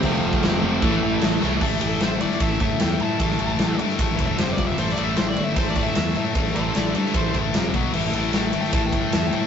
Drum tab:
CC |x---x---x---x---|x---------------|----------------|x---------------|
RD |----------------|--x-x-x-x-x-x-x-|x-x-x-x-x-x-x-x-|--x-x-x-x-x-x-x-|
SD |----o-------o-o-|-o--o--o----o---|-o--o--o----o---|-o--o-------o---|
BD |o--o----o-------|o-------o-o-----|o-------o-o---o-|--------o-o-----|

CC |----------------|x---------------|
RD |x-x-x-x-x-x-x-x-|--x-x-x-x-x-x-x-|
SD |-o--o--o----o---|-o--o--o----o---|
BD |o-------o-o---o-|--------o-o-----|